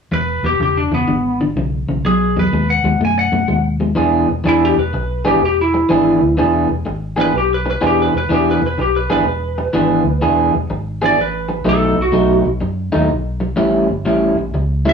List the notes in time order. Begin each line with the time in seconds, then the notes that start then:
0.11 E1 E2 B2 B4
0.43 E1 E2 B2 G4
0.59 E1 E2 C#3 G4
0.77 D4
0.91 E1 E2 C#3 B3
1.08 G#1 E2 D3
1.41 E2 D3
1.56 B1 E2 C#3
1.87 B1 E2 C#3
2.03 B1 B2 F#3 G#4
2.36 E2 B2 F#3 B4
2.52 D#2 B2 G#3
2.70 F#5
2.83 D#2 B2 G#3
3.00 F#2 B2 A3
3.05 G#5
3.19 F#5
3.32 F#2 B2 A3
3.48 D#2 B2 G#3
3.80 B2 G#3
3.95 E1 E3 B3 D4 G#4
4.28 E1, muted clean electric guitar stroke
4.44 E1 E3 B3 D4 G#4
4.49 E4
4.65 G4
4.77 E1 B4, muted clean electric guitar stroke
4.93 B1, muted clean electric guitar stroke
5.25 E3 B3 D4 G4 G#4
5.42 E1 G4, muted clean electric guitar stroke
5.61 E4
5.74 muted clean electric guitar stroke
5.89 G#1 E3 B3 D4 G#4
6.21 D2, muted clean electric guitar stroke
6.37 E1 E3 B3 D4 G#4
6.69 E1, muted clean electric guitar stroke
6.86 G#1, muted clean electric guitar stroke
7.16 E3 B3 D4 G#4
7.21 B4
7.33 B1, muted clean electric guitar stroke
7.38 G4
7.54 B4
7.66 muted clean electric guitar stroke
7.71 B4
7.81 E1 E3 B3 D4 G#4
7.87 G4
8.02 B4
8.13 E1, muted clean electric guitar stroke
8.18 B4
8.29 E1 E3 B3 D4 G#4
8.34 G4
8.51 B4
8.62 E1, muted clean electric guitar stroke
8.67 B4
8.78 B1 G4, muted clean electric guitar stroke
8.96 B4
9.10 G#1 E3 B3 D4 G#4 B4
9.25 E1, muted clean electric guitar stroke
9.58 muted clean electric guitar stroke
9.73 G#1 E3 B3 D4 G#4
10.04 D2, muted clean electric guitar stroke
10.21 E1 E3 B3 D4 G#4
10.54 E1, muted clean electric guitar stroke
10.70 G#1, muted clean electric guitar stroke
11.02 E3 B3 D4 G#4 D5
11.17 A1, muted clean electric guitar stroke
11.21 B4
11.49 muted clean electric guitar stroke
11.64 B1 B2 F#3 A3 D#4
11.69 A4
11.96 B1, muted clean electric guitar stroke
12.02 F#4
12.12 B1 B2 F#3 A3 D#4
12.45 B1, muted clean electric guitar stroke
12.61 F#2, muted clean electric guitar stroke
12.92 D#2 B2 F#3 A3 D#4
13.09 B1, muted clean electric guitar stroke
13.40 muted clean electric guitar stroke
13.56 A1 A2 G3 C#4 E4
13.89 G1, muted clean electric guitar stroke
14.05 A1 A2 G3 C#4 E4
14.37 A1, muted clean electric guitar stroke
14.54 C#2, muted clean electric guitar stroke
14.85 A2 G3 C#4 E4 E5